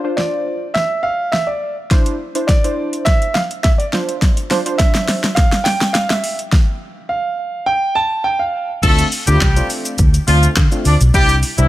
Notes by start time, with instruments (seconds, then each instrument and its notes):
0.04 synth keys D4 F4 C5
0.17 grand piano D5, snare
0.74 grand piano E5, snare
1.03 grand piano F5
1.32 grand piano E5, snare
1.47 grand piano D5
1.91 synth keys D4 E4 C5, kick, snare, closed hi-hat
2.06 closed hi-hat
2.35 synth keys D4 E4 C5, closed hi-hat
2.47 grand piano D5, kick, snare, closed hi-hat
2.64 synth keys D4 E4 C5, closed hi-hat
2.93 closed hi-hat
3.05 grand piano E5, kick, snare, closed hi-hat
3.22 closed hi-hat
3.34 grand piano F5, snare
3.51 closed hi-hat
3.63 grand piano E5, kick, snare, closed hi-hat
3.78 grand piano D5, closed hi-hat
3.93 synth keys D4 F4 C5, snare
4.09 closed hi-hat
4.22 kick, snare, closed hi-hat
4.37 closed hi-hat
4.50 synth keys D4 F4 C5, snare, open hi-hat
4.66 synth keys D4 F4 C5, closed hi-hat
4.78 grand piano E5, kick, snare, closed hi-hat
4.95 snare, closed hi-hat
5.08 snare, open hi-hat
5.24 snare, closed hi-hat
5.35 grand piano F5, kick, snare, closed hi-hat
5.52 snare, closed hi-hat
5.64 grand piano G5, snare, open hi-hat
5.81 snare, closed hi-hat
5.93 grand piano F5, snare, closed hi-hat
6.09 grand piano E5, snare, closed hi-hat
6.24 open hi-hat
6.39 closed hi-hat
6.52 kick, snare
7.09 grand piano F5
7.66 grand piano G5
7.95 grand piano A5
8.24 grand piano G5
8.39 grand piano F5
8.83 fingered electric bass D2, synth keys A3 C4 D4 F4, horn section A3 A4, kick, closed hi-hat, crash, shaker
8.99 closed hi-hat, shaker
9.12 open hi-hat, shaker
9.27 fingered electric bass D2, horn section G3 G4, synth keys A3 C4 D4 F4, closed hi-hat, shaker
9.41 kick, snare, clap, closed hi-hat, shaker
9.56 synth keys A3 C4 D4 F4, closed hi-hat, shaker
9.70 open hi-hat, shaker
9.85 closed hi-hat, shaker
9.98 fingered electric bass D2, kick, closed hi-hat, shaker
10.14 closed hi-hat, shaker
10.27 fingered electric bass D2, horn section F3 F4, synth keys A3 C4 D4 F4, open hi-hat, shaker
10.43 closed hi-hat, shaker
10.56 fingered electric bass D3, kick, snare, clap, closed hi-hat, shaker
10.71 synth keys A3 C4 D4 F4, closed hi-hat, shaker
10.85 fingered electric bass D2, horn section D4 D5, open hi-hat, shaker
11.01 fingered electric bass B1, closed hi-hat, shaker
11.14 synth keys G3 C4 D4 E4, horn section G3 G4, kick, closed hi-hat, shaker
11.29 closed hi-hat, shaker
11.43 open hi-hat, shaker
11.58 fingered electric bass C2, horn section E3 E4, synth keys G3 C4 D4 E4, closed hi-hat, shaker